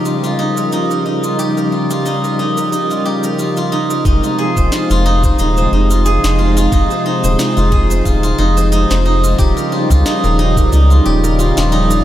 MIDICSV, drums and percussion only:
0, 0, Header, 1, 2, 480
1, 0, Start_track
1, 0, Key_signature, -4, "minor"
1, 0, Tempo, 666667
1, 1002, Time_signature, 4, 2, 24, 8
1, 8671, End_track
2, 0, Start_track
2, 0, Title_t, "Drums"
2, 38, Note_on_c, 9, 69, 45
2, 110, Note_off_c, 9, 69, 0
2, 171, Note_on_c, 9, 69, 27
2, 243, Note_off_c, 9, 69, 0
2, 411, Note_on_c, 9, 69, 57
2, 483, Note_off_c, 9, 69, 0
2, 520, Note_on_c, 9, 69, 47
2, 592, Note_off_c, 9, 69, 0
2, 653, Note_on_c, 9, 69, 27
2, 725, Note_off_c, 9, 69, 0
2, 890, Note_on_c, 9, 69, 57
2, 962, Note_off_c, 9, 69, 0
2, 1003, Note_on_c, 9, 69, 48
2, 1075, Note_off_c, 9, 69, 0
2, 1134, Note_on_c, 9, 69, 28
2, 1206, Note_off_c, 9, 69, 0
2, 1372, Note_on_c, 9, 69, 61
2, 1444, Note_off_c, 9, 69, 0
2, 1481, Note_on_c, 9, 69, 47
2, 1553, Note_off_c, 9, 69, 0
2, 1614, Note_on_c, 9, 69, 30
2, 1686, Note_off_c, 9, 69, 0
2, 1852, Note_on_c, 9, 69, 55
2, 1924, Note_off_c, 9, 69, 0
2, 1964, Note_on_c, 9, 69, 50
2, 2036, Note_off_c, 9, 69, 0
2, 2092, Note_on_c, 9, 69, 28
2, 2164, Note_off_c, 9, 69, 0
2, 2329, Note_on_c, 9, 69, 54
2, 2401, Note_off_c, 9, 69, 0
2, 2439, Note_on_c, 9, 69, 45
2, 2511, Note_off_c, 9, 69, 0
2, 2568, Note_on_c, 9, 69, 31
2, 2640, Note_off_c, 9, 69, 0
2, 2811, Note_on_c, 9, 69, 57
2, 2883, Note_off_c, 9, 69, 0
2, 2917, Note_on_c, 9, 36, 112
2, 2919, Note_on_c, 9, 69, 53
2, 2989, Note_off_c, 9, 36, 0
2, 2991, Note_off_c, 9, 69, 0
2, 3050, Note_on_c, 9, 69, 36
2, 3122, Note_off_c, 9, 69, 0
2, 3289, Note_on_c, 9, 36, 95
2, 3291, Note_on_c, 9, 69, 72
2, 3361, Note_off_c, 9, 36, 0
2, 3363, Note_off_c, 9, 69, 0
2, 3399, Note_on_c, 9, 38, 77
2, 3400, Note_on_c, 9, 69, 54
2, 3471, Note_off_c, 9, 38, 0
2, 3472, Note_off_c, 9, 69, 0
2, 3530, Note_on_c, 9, 69, 35
2, 3602, Note_off_c, 9, 69, 0
2, 3770, Note_on_c, 9, 36, 104
2, 3771, Note_on_c, 9, 69, 64
2, 3842, Note_off_c, 9, 36, 0
2, 3843, Note_off_c, 9, 69, 0
2, 3878, Note_on_c, 9, 69, 54
2, 3950, Note_off_c, 9, 69, 0
2, 4010, Note_on_c, 9, 69, 31
2, 4082, Note_off_c, 9, 69, 0
2, 4252, Note_on_c, 9, 69, 71
2, 4324, Note_off_c, 9, 69, 0
2, 4362, Note_on_c, 9, 69, 55
2, 4434, Note_off_c, 9, 69, 0
2, 4494, Note_on_c, 9, 38, 84
2, 4496, Note_on_c, 9, 69, 34
2, 4566, Note_off_c, 9, 38, 0
2, 4568, Note_off_c, 9, 69, 0
2, 4732, Note_on_c, 9, 69, 65
2, 4804, Note_off_c, 9, 69, 0
2, 4839, Note_on_c, 9, 36, 127
2, 4842, Note_on_c, 9, 69, 54
2, 4911, Note_off_c, 9, 36, 0
2, 4914, Note_off_c, 9, 69, 0
2, 4972, Note_on_c, 9, 69, 35
2, 5044, Note_off_c, 9, 69, 0
2, 5212, Note_on_c, 9, 69, 75
2, 5284, Note_off_c, 9, 69, 0
2, 5322, Note_on_c, 9, 38, 80
2, 5323, Note_on_c, 9, 69, 54
2, 5394, Note_off_c, 9, 38, 0
2, 5395, Note_off_c, 9, 69, 0
2, 5454, Note_on_c, 9, 69, 34
2, 5526, Note_off_c, 9, 69, 0
2, 5560, Note_on_c, 9, 36, 105
2, 5632, Note_off_c, 9, 36, 0
2, 5694, Note_on_c, 9, 69, 68
2, 5766, Note_off_c, 9, 69, 0
2, 5800, Note_on_c, 9, 36, 62
2, 5802, Note_on_c, 9, 69, 53
2, 5872, Note_off_c, 9, 36, 0
2, 5874, Note_off_c, 9, 69, 0
2, 5933, Note_on_c, 9, 69, 33
2, 6005, Note_off_c, 9, 69, 0
2, 6173, Note_on_c, 9, 69, 64
2, 6245, Note_off_c, 9, 69, 0
2, 6282, Note_on_c, 9, 69, 54
2, 6354, Note_off_c, 9, 69, 0
2, 6414, Note_on_c, 9, 38, 89
2, 6415, Note_on_c, 9, 69, 35
2, 6486, Note_off_c, 9, 38, 0
2, 6487, Note_off_c, 9, 69, 0
2, 6653, Note_on_c, 9, 69, 69
2, 6725, Note_off_c, 9, 69, 0
2, 6760, Note_on_c, 9, 36, 120
2, 6762, Note_on_c, 9, 69, 56
2, 6832, Note_off_c, 9, 36, 0
2, 6834, Note_off_c, 9, 69, 0
2, 6895, Note_on_c, 9, 69, 37
2, 6967, Note_off_c, 9, 69, 0
2, 7131, Note_on_c, 9, 36, 102
2, 7134, Note_on_c, 9, 69, 75
2, 7203, Note_off_c, 9, 36, 0
2, 7206, Note_off_c, 9, 69, 0
2, 7242, Note_on_c, 9, 38, 76
2, 7243, Note_on_c, 9, 69, 60
2, 7314, Note_off_c, 9, 38, 0
2, 7315, Note_off_c, 9, 69, 0
2, 7375, Note_on_c, 9, 69, 35
2, 7447, Note_off_c, 9, 69, 0
2, 7611, Note_on_c, 9, 36, 111
2, 7613, Note_on_c, 9, 69, 68
2, 7683, Note_off_c, 9, 36, 0
2, 7685, Note_off_c, 9, 69, 0
2, 7722, Note_on_c, 9, 69, 56
2, 7794, Note_off_c, 9, 69, 0
2, 7855, Note_on_c, 9, 69, 33
2, 7927, Note_off_c, 9, 69, 0
2, 8094, Note_on_c, 9, 69, 71
2, 8166, Note_off_c, 9, 69, 0
2, 8205, Note_on_c, 9, 69, 60
2, 8277, Note_off_c, 9, 69, 0
2, 8335, Note_on_c, 9, 38, 77
2, 8336, Note_on_c, 9, 69, 36
2, 8407, Note_off_c, 9, 38, 0
2, 8408, Note_off_c, 9, 69, 0
2, 8573, Note_on_c, 9, 69, 68
2, 8645, Note_off_c, 9, 69, 0
2, 8671, End_track
0, 0, End_of_file